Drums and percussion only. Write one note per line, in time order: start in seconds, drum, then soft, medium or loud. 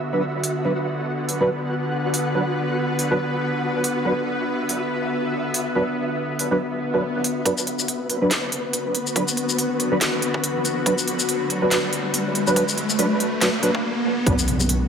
0.44 open hi-hat medium
1.29 open hi-hat medium
2.14 open hi-hat medium
2.99 open hi-hat medium
3.84 open hi-hat medium
4.69 open hi-hat medium
5.54 open hi-hat medium
6.39 open hi-hat medium
7.24 open hi-hat medium
7.46 kick loud
7.46 closed hi-hat medium
7.58 shaker medium
7.67 closed hi-hat soft
7.79 shaker medium
7.88 closed hi-hat medium
8.10 closed hi-hat medium
8.31 snare loud
8.31 closed hi-hat medium
8.52 closed hi-hat medium
8.73 closed hi-hat medium
8.95 closed hi-hat medium
9.07 shaker soft
9.16 kick loud
9.16 closed hi-hat medium
9.28 shaker medium
9.37 closed hi-hat medium
9.49 shaker medium
9.59 closed hi-hat medium
9.80 closed hi-hat medium
10.01 snare loud
10.01 closed hi-hat medium
10.22 closed hi-hat medium
10.34 kick loud
10.44 closed hi-hat medium
10.65 closed hi-hat medium
10.65 shaker soft
10.86 kick loud
10.86 closed hi-hat medium
10.98 shaker medium
11.08 closed hi-hat medium
11.19 shaker medium
11.29 closed hi-hat medium
11.50 closed hi-hat medium
11.71 snare loud
11.71 closed hi-hat medium
11.93 closed hi-hat medium
12.14 closed hi-hat medium
12.35 closed hi-hat medium
12.47 shaker soft
12.56 kick loud
12.56 closed hi-hat medium
12.68 shaker medium
12.78 closed hi-hat medium
12.90 shaker medium
12.99 closed hi-hat medium
13.20 closed hi-hat medium
13.41 snare loud
13.41 closed hi-hat medium
13.63 closed hi-hat medium
13.75 kick loud
14.26 kick loud
14.26 closed hi-hat medium
14.26 high conga medium
14.39 shaker medium
14.48 closed hi-hat medium
14.60 high conga medium
14.60 shaker medium
14.69 closed hi-hat medium